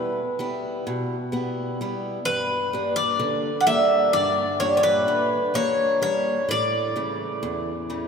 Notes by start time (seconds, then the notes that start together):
Already playing: E2 G3 B3 E4 B4
0.39 G3 B3 E4
0.87 B2
1.32 G3 B3 E4
1.81 G3 B3 E4
2.25 G2 B4
2.73 G3 A#3 D4
2.96 D5
3.19 D3
3.61 F#5
3.67 G3 A#3 D4 E5
4.13 G2 D5
4.60 A#2 G3 D4 C#5
4.77 C#5
4.83 B4
5.08 D3
5.54 G3 A#3 D4 C#5
6.02 G3 A#3 D4 C#5
6.49 A2 D5
6.96 C#3 E3 A3
7.43 E2
7.90 C#3 E3 A3